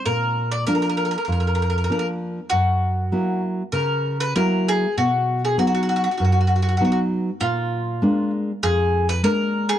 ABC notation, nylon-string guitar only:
X:1
M:4/4
L:1/8
Q:"Swing" 1/4=98
K:Bbphr
V:1 name="Nylon-string guitar"
B,,2 [F,B,=D]2 F,,2 [F,B,D]2 | G,,2 [G,B,_F]2 D,2 [G,B,F]2 | =B,,2 [^F,=B,^D]2 ^F,,2 [F,B,D]2 | B,,2 [A,B,=D]2 F,,2 [A,B,D]2 |]